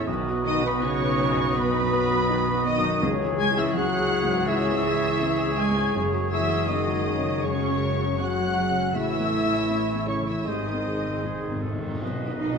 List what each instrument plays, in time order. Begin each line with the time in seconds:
Already playing: felt piano E2 C#4 E4 A4, harp A2 E3 A3 C#4
0.07 felt piano B1, double bass section B1, harp B2, viola section D#3 B4, clarinet F#4, oboe D#5
0.27 viola section F#3, felt piano B3
0.45 cello section D#3, harp B3, viola section B3, french horn section D#4, violin section D#5 D#6, flute D#5
0.57 felt piano F#4
0.64 cello section B2, french horn section B3, viola section D#4, violin section B4 B5, flute B4
0.82 cello section C#3, viola section B3, french horn section C#4, felt piano D#4, harp D#4, violin section C#5 C#6, flute C#5
1.01 viola section F#3
1.06 felt piano B3
1.19 viola section D#3, harp B3
1.32 felt piano F#2
1.39 viola section F#3
1.55 cello section B2, harp B2, felt piano B3, french horn section B3, viola section B3, violin section B4 B5, flute B4
1.76 viola section D#4
1.80 felt piano F#2
1.93 harp F#3, viola section B3
2.05 felt piano F#4
2.12 viola section F#3
2.29 viola section D#3, felt piano D#4, harp D#4
2.49 viola section F#3
2.54 felt piano B3
2.65 cello section D#3, harp B3, viola section B3, french horn section D#4, violin section D#5 D#6, flute D#5
2.78 felt piano F#2
2.84 viola section D#4
3.02 felt piano C#2, double bass section C#2, timpani C#3, viola section C#3 G#4, harp C#3, clarinet G#4, oboe C#5
3.21 viola section E3
3.27 felt piano G#3
3.38 viola section G#3, harp G#3, cello section G#3, french horn section G#4, violin section G#5 G#6, flute G#5
3.50 felt piano E4
3.56 cello section E3, viola section C#4, french horn section E4, violin section E5 E6, flute E5
3.75 cello section F#3, viola section G#3, felt piano C#4, harp E4, french horn section F#4, violin section F#5 F#6, flute F#5
3.93 viola section E3
3.99 felt piano G#3
4.12 viola section C#3, harp G#3
4.24 felt piano G#2
4.30 viola section E3
4.47 harp C#3, cello section E3, viola section G#3, felt piano G#3, french horn section E4, violin section E5 E6, flute E5
4.67 viola section C#4
4.72 felt piano G#2
4.84 viola section G#3
4.97 felt piano E4
5.03 viola section E3
5.21 viola section C#3, felt piano C#4
5.39 viola section E3
5.46 felt piano G#3
5.57 cello section G#3, harp G#3, viola section G#3, french horn section G#4, violin section G#5 G#6, flute G#5
5.71 felt piano G#2
5.77 viola section C#4
5.95 double bass section F#1, harp F#2, felt piano F#2, viola section C#3
6.13 viola section F#3
6.20 felt piano G#3
6.31 harp C#3, cello section E3, viola section G#3, french horn section E4, violin section E5 E6, flute E5
6.45 felt piano F#4
6.50 viola section C#4
6.68 cello section D#3, viola section G#3, felt piano C#4, french horn section D#4, harp F#4, violin section D#5 D#6, flute D#5
6.87 viola section F#3
6.94 felt piano G#3
7.05 viola section C#3, harp C#3
7.18 felt piano C#3
7.25 viola section F#3
7.42 harp F#2, cello section C#3, viola section G#3, felt piano G#3, french horn section C#4, violin section C#5 C#6, flute C#5
7.63 viola section C#4
7.69 felt piano C#3
7.82 viola section G#3, harp C#4
7.95 felt piano F#4
8.01 viola section F#3
8.20 viola section C#3, cello section F#3, felt piano C#4, french horn section F#4, harp F#4, flute F#5, violin section F#5 F#6
8.38 viola section F#3
8.45 felt piano G#3
8.58 harp C#3, viola section G#3
8.70 felt piano C#3
8.77 viola section C#4
8.94 double bass section A1, harp A2, felt piano A2, viola section C#3 E4, cello section E3, clarinet E4, french horn section E4, oboe C#5, flute E5, violin section E5 E6
9.14 viola section E3
9.20 felt piano A3
9.31 harp E3, viola section A3
9.45 felt piano E4
9.51 viola section C#4
9.69 viola section A3, felt piano C#4
9.89 viola section E3
9.95 felt piano A3
10.08 viola section C#3, cello section C#3, harp E3, french horn section C#4, violin section C#5 C#6, flute C#5
10.20 felt piano E3
10.27 viola section E3, cello section E3, french horn section E4, flute E5, violin section E5 E6
10.46 double bass section G#1, felt piano G#2, timpani G#2, harp G#2, viola section C3 G#4, cello section D#3, french horn section D#4, clarinet G#4, oboe C5, flute D#5, violin section D#5 D#6
10.55 timpani G#2
10.63 timpani G#2, viola section D#3
10.72 felt piano C4
10.79 timpani G#2
10.86 timpani G#2, harp D#3, viola section G#3
10.98 timpani G#2, felt piano G#4
11.05 timpani G#2, viola section C4
11.17 timpani G#2
11.24 timpani G#2, viola section G#3, felt piano D#4, clarinet G#4, harp G#5
11.33 timpani G#2
11.40 timpani G#2, viola section D#3
11.48 timpani G#2, felt piano C4
11.56 timpani G#2
11.62 timpani G#2, viola section C3, harp D#3, clarinet A4
11.71 timpani G#2
11.76 timpani G#2, felt piano D#3
11.82 viola section D#3
11.87 timpani G#2
11.95 timpani G#2
12.01 felt piano B1, double bass section B1, harp B2, clarinet B4, flute D#5, viola section D#5, violin section D#5, tam-tam
12.27 felt piano B3 D#4 F#4
12.39 harp F#3, cello section D#4, french horn section D#4, violin section D#5
12.52 felt piano B3 D#4 F#4